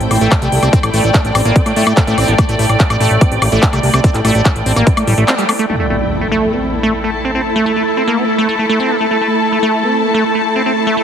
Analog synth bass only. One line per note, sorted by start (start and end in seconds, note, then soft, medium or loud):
0.01 0.07 A1 medium
0.11 0.17 A1 loud
0.21 0.28 A1 loud
0.42 0.48 C2 medium
0.52 0.59 C2 loud
0.63 0.69 C2 medium
0.83 0.90 A1 medium
0.94 1.00 A1 loud
1.04 1.11 A1 medium
1.25 1.31 A1 medium
1.35 1.42 A1 loud
1.45 1.52 A1 medium
1.66 1.73 A2 medium
1.76 1.83 A2 loud
1.87 1.93 A2 loud
2.07 2.14 A1 medium
2.18 2.24 A1 loud
2.28 2.35 A1 medium
2.49 2.55 A1 medium
2.59 2.66 A1 loud
2.69 2.76 A1 medium
2.90 2.97 A1 medium
3.01 3.07 A1 loud
3.11 3.17 A1 medium
3.32 3.38 A1 medium
3.42 3.48 A1 loud
3.52 3.59 A1 loud
3.73 3.80 C2 medium
3.83 3.90 C2 loud
3.94 4.00 C2 medium
4.14 4.21 A1 medium
4.25 4.31 A1 loud
4.35 4.42 A1 medium
4.56 4.62 A1 medium
4.66 4.73 A1 loud
4.76 4.83 A1 medium
4.97 5.04 A2 medium
5.07 5.14 A1 loud
5.18 5.24 A1 medium